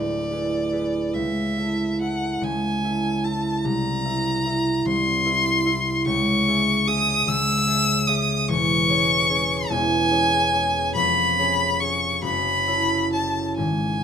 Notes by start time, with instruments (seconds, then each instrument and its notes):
Already playing: harp D1 D2 E4 G#4 B4, violin D5
0.30 harp E4 G#4 B4
0.72 harp E4 G#4 B4
1.14 harp C#2 C#3, violin E5
1.57 harp E4 A4 E5
2.01 harp E4 A4 E5, violin F#5
2.41 harp C#2 C#3, violin G#5
2.84 harp E4 A4 E5
3.24 harp E4 A4 E5, violin A5
3.64 harp C2 C3, violin A#5
4.05 harp E4 A#4 E5
4.46 harp E4 A#4 E5
4.85 harp C2 C3, violin C6
5.25 harp E4 A#4 E5
5.65 harp E4 A#4 E5
6.06 harp C#2 C#3, violin C#6
6.47 harp C#4 G#4 E5
6.87 harp C#4 G#4 E5, violin D#6
7.27 harp C#2 C#3, violin E6
7.67 harp C#4 G#4 E5
8.07 harp C#4 G#4 E5, violin D#6
8.49 harp E1 E2, violin C#6
8.89 harp C#4 G#4 C#5
9.29 harp C#4 G#4 C#5
9.70 harp E1 E2, violin G#5
10.11 harp C#4 G#4 C#5
10.52 harp C#4 G#4 C#5
10.95 harp F1 F2, violin B5
11.38 harp C#4 G#4 C#5
11.80 harp C#4 G#4 C#5, violin C#6
12.22 harp F#1 F#2, violin B5
12.67 harp E4 A4 C#5
13.12 harp E4 A4 C#5, violin A5
13.57 harp G#1 G#2, violin G#5